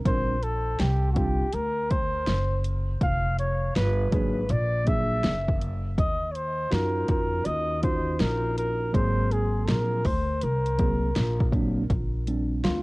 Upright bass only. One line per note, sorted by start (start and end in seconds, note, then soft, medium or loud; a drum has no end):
0.06 0.76 A#1 medium
0.80 1.38 C2 loud
1.41 muted upright bass stroke soft
1.53 2.24 D2 medium
2.27 2.98 F#1 loud
3.01 3.72 F1 medium
3.76 4.11 G1 medium
4.13 4.48 G#1 medium
4.49 5.20 A#1 loud
5.24 5.94 F#1 medium
5.98 6.68 D#2 medium
6.72 7.07 F#2 medium
7.09 7.44 F2 medium
7.46 8.16 D#2 medium
8.20 8.91 A#1 medium
8.94 9.65 G#1 medium
9.68 10.04 A#1 loud
10.05 10.40 D2 medium
10.43 11.13 C2 medium
11.17 11.87 A#1 loud
11.90 12.61 A#1 loud
12.65 12.83 D2 medium